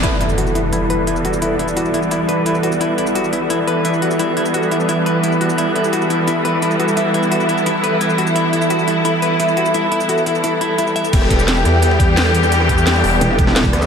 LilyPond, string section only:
\new Staff \with { instrumentName = "String section" } { \time 4/4 \key e \minor \tempo 4 = 173 << { r1 | r1 | r1 | r1 |
e'1~ | e'1~ | e'1~ | e'1 |
g'1~ | g'1 | } \\ { <e g b>1~ | <e g b>1~ | <e g b>1~ | <e g b>1~ |
<e g b>1~ | <e g b>1~ | <e g b>1~ | <e g b>1 |
<e g b>1~ | <e g b>1 | } >> }